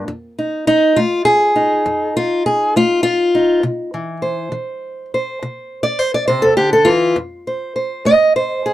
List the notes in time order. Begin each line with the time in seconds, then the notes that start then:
0.08 F2
0.39 D#4
0.67 D#4
0.96 A3 F4
1.25 G#4
1.56 D#4
1.86 F2
2.17 F4
2.46 G#4
2.76 A3 F4
3.03 F4
3.35 D#4
3.63 C3
3.94 E3
4.22 C5
4.52 E3
5.14 C5
5.43 C3
5.83 D5
5.99 C5
6.14 D5
6.28 C3 C5
6.42 A4
6.57 D3 G4
6.73 A4
6.85 E3 F4
7.16 F2
7.47 C5
7.76 C5
8.05 A3 D#5
8.36 C5
8.66 G#4